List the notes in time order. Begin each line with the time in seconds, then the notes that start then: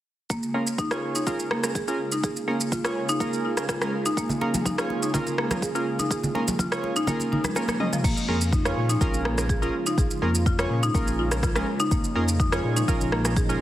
0.30 C#3 G#3 A#3 F4 G#4, kick, shaker
0.43 shaker
0.54 A#3 C#4 F4 G#4 A#4
0.67 shaker
0.78 D#4, kick, shaker
0.91 C#4 F4 G#4 C#5, cross-stick, shaker
1.15 D#4, shaker
1.27 C#4 F4 G#4 A#4, kick, shaker
1.39 shaker
1.51 A#3, cross-stick
1.63 C#4 F4 G#4 A#4, cross-stick, shaker
1.75 G#4, kick, shaker
1.88 C#4 F4 G#4 A#4, shaker
2.12 D#4, shaker
2.24 G#4, kick, shaker
2.36 shaker
2.48 A#3 C#4 F4 G#4 A#4
2.61 shaker
2.72 F4, kick, shaker
2.85 C#4 F4 G#4 C#5, cross-stick, shaker
3.09 D#4, shaker
3.20 A#3 C#4 F4 G#4 A#4, kick, shaker
3.33 shaker
3.45 F4
3.57 C#4 F4 G#4 A#4, cross-stick, shaker
3.69 F4, kick, cross-stick, shaker
3.81 G#3 C#4 F4 G#4 A#4, cross-stick, shaker
4.06 D#4, shaker
4.17 A#3, kick, shaker
4.29 low conga, shaker
4.41 A#3 C#4 F4 G#4 A#4, muted conga
4.54 high conga, shaker
4.66 D#4, kick, high conga, shaker
4.78 C#4 F4 G#4 C#5, cross-stick, shaker
4.90 muted conga
5.03 D#4, shaker
5.14 C#4 F4 G#4 A#4, kick, low conga, shaker
5.27 muted conga, shaker
5.38 A#3, cross-stick
5.51 C#4 F4 G#4 A#4, cross-stick, high conga, shaker
5.62 G#4, kick, muted conga, shaker
5.75 C#4 F4 G#4 A#4, shaker
5.99 D#4, muted conga, shaker
6.11 G#4, kick, shaker
6.24 low conga, shaker
6.35 A#3 C#4 F4 G#4 A#4, muted conga
6.48 high conga, shaker
6.59 F4, kick, high conga, shaker
6.72 C#4 F4 G#4 C#5, cross-stick, shaker
6.84 muted conga
6.96 D#4, shaker
7.07 A#3 C#4 F4 G#4 A#4, kick, low conga, shaker
7.20 muted conga, shaker
7.32 D#4, low conga
7.44 G#3, cross-stick, high conga, shaker
7.55 A#3 C#4 F4 G#4 A#4, cross-stick, muted conga, shaker
7.68 A#3, cross-stick, high conga, shaker
7.80 C#4 F4 G#4 D#5, high tom
7.93 F3, mid tom, muted conga, shaker
8.04 A#1 C#3 F3 G#3 A#3 C#4 F4, kick, crash, shaker
8.17 shaker
8.28 F2 A#3 C#4 F4 G#4 A#4
8.41 shaker
8.53 D#4, kick, shaker
8.65 C#4 F4 G#4 C#5, cross-stick, shaker
8.77 A#2
8.90 D#4, shaker
9.01 A#1 C#4 F4 G#4 A#4, kick, shaker
9.14 A#1, shaker
9.25 A#3, cross-stick
9.38 C#4 F4 G#4 A#4, cross-stick, shaker
9.49 G#4, kick, shaker
9.62 C#4 F4 G#4 A#4, shaker
9.86 D#4, shaker
9.98 A#1 G#4, kick, shaker
10.11 shaker
10.22 F2 A#3 C#4 F4 G#4 A#4
10.35 shaker
10.46 F4, kick, shaker
10.59 C#4 F4 G#4 C#5, cross-stick, shaker
10.70 A#2
10.83 D#4, shaker
10.95 A#1 A#3 C#4 F4 G#4 A#4, kick, shaker
11.07 A#1, shaker
11.19 F4
11.31 C#4 F4 G#4 A#4, cross-stick, shaker
11.43 F4, kick, cross-stick, shaker
11.55 G#3 C#4 F4 G#4 A#4, cross-stick, shaker
11.80 D#4, shaker
11.91 A#1 A#3 D#4, kick, shaker
12.04 shaker
12.15 F2 A#3 C#4 F4 G#4 A#4
12.28 shaker
12.40 D#4, kick, shaker
12.52 C#4 F4 G#4 C#5, cross-stick, shaker
12.64 A#2
12.77 D#4, shaker
12.88 A#1 C#4 F4 G#4 A#4, kick, shaker
13.01 A#1, shaker
13.12 A#3, cross-stick
13.25 C#4 F4 G#4 A#4, cross-stick, shaker
13.37 G#4, kick, shaker
13.49 C#4 F4 G#4 A#4, shaker